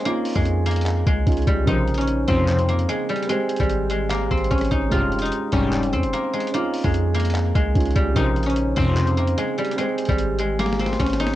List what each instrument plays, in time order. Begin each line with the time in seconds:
Already playing: guzheng G#3 C4 D#4 F4
0.03 guzheng A#3, grand piano C#4 D#4, closed hi-hat
0.08 grand piano F4
0.25 open hi-hat
0.35 808-style bass F2, guzheng G#3, kick
0.45 closed hi-hat
0.66 guzheng A#3, closed hi-hat
0.71 closed hi-hat
0.76 closed hi-hat
0.81 closed hi-hat
0.86 clap, closed hi-hat
1.07 808-style bass C#2, guzheng G#3, kick, closed hi-hat
1.26 808-style bass C#2, grand piano C#4 D#4 F4, kick, closed hi-hat
1.32 closed hi-hat
1.37 closed hi-hat
1.42 closed hi-hat
1.47 808-style bass C#2, guzheng G3, kick, closed hi-hat
1.65 808-style bass A#1, analog polysynth C#2 C3 F3, grand piano C#3 A#4, guzheng D#4, kick, closed hi-hat
1.69 grand piano C5
1.88 closed hi-hat
1.94 guzheng C#4, closed hi-hat
2.01 closed hi-hat
2.08 closed hi-hat
2.28 analog polysynth C#2 C3 F3, 808-style bass F2, guzheng C4, kick, closed hi-hat
2.48 clap, closed hi-hat
2.59 closed hi-hat
2.69 guzheng A#3, closed hi-hat
2.79 closed hi-hat
2.89 guzheng G#3, closed hi-hat
3.09 guzheng G3, closed hi-hat
3.16 closed hi-hat
3.23 closed hi-hat
3.27 guzheng G#3, grand piano C4 G4, closed hi-hat
3.32 grand piano C5
3.49 closed hi-hat, open hi-hat
3.56 808-style bass G#1, guzheng G3, kick, closed hi-hat
3.63 closed hi-hat
3.70 closed hi-hat
3.90 guzheng G#3, closed hi-hat
4.10 guzheng A#3, clap, closed hi-hat
4.31 808-style bass G#1, guzheng C4, kick, closed hi-hat
4.38 closed hi-hat
4.44 closed hi-hat
4.51 808-style bass G#1, guzheng C#4, kick, closed hi-hat
4.58 cross-stick, closed hi-hat
4.61 closed hi-hat
4.65 closed hi-hat
4.71 808-style bass G#1, guzheng D#4, kick, closed hi-hat
4.89 808-style bass F1, analog polysynth G#1 G2 C3, grand piano G#3 F4, guzheng F4, kick, closed hi-hat
4.94 grand piano G4
5.12 closed hi-hat
5.19 guzheng D#4, closed hi-hat
5.25 closed hi-hat
5.32 closed hi-hat
5.52 808-style bass F1, analog polysynth C2 G#2 G3, guzheng C#4, kick, closed hi-hat
5.73 clap, closed hi-hat
5.83 closed hi-hat
5.93 808-style bass F2, guzheng C4, closed hi-hat
6.03 808-style bass F1, closed hi-hat
6.13 guzheng A#3, closed hi-hat
6.33 guzheng G#3, closed hi-hat
6.40 closed hi-hat
6.47 closed hi-hat
6.52 guzheng A#3, grand piano C#4 D#4, closed hi-hat
6.56 grand piano F4
6.74 open hi-hat
6.84 808-style bass F2, guzheng G#3, kick
6.94 closed hi-hat
7.14 guzheng A#3, closed hi-hat
7.20 closed hi-hat
7.25 closed hi-hat
7.30 closed hi-hat
7.35 clap, closed hi-hat
7.55 808-style bass C#2, guzheng G#3, kick, closed hi-hat
7.74 808-style bass C#2, grand piano C#4 D#4 F4, kick, closed hi-hat
7.80 closed hi-hat
7.85 closed hi-hat
7.91 closed hi-hat
7.96 808-style bass C#2, guzheng G3, kick, closed hi-hat
8.13 808-style bass A#1, analog polysynth C#2 C3 F3, grand piano C#3 A#4, guzheng D#4, kick, closed hi-hat
8.18 grand piano C5
8.36 closed hi-hat
8.43 guzheng C#4, closed hi-hat
8.50 closed hi-hat
8.56 closed hi-hat
8.76 analog polysynth C#2 C3 F3, 808-style bass F2, guzheng C4, kick, closed hi-hat
8.97 clap, closed hi-hat
9.07 closed hi-hat
9.17 guzheng A#3, closed hi-hat
9.27 closed hi-hat
9.38 guzheng G#3, closed hi-hat
9.58 guzheng G3, closed hi-hat
9.65 closed hi-hat
9.71 closed hi-hat
9.76 guzheng G#3, grand piano C4 G4, closed hi-hat
9.80 grand piano C5
9.98 closed hi-hat, open hi-hat
10.05 808-style bass G#1, guzheng G3, kick, closed hi-hat
10.12 closed hi-hat
10.18 closed hi-hat
10.39 guzheng G#3, closed hi-hat
10.59 guzheng A#3, snare, closed hi-hat
10.66 snare
10.73 snare
10.79 guzheng C4, snare, closed hi-hat
10.86 snare, closed hi-hat
10.93 snare, closed hi-hat
11.00 808-style bass G#1, guzheng C#4, kick, snare, closed hi-hat
11.06 snare, closed hi-hat
11.10 snare, closed hi-hat
11.13 closed hi-hat
11.20 guzheng D#4, snare, closed hi-hat
11.27 snare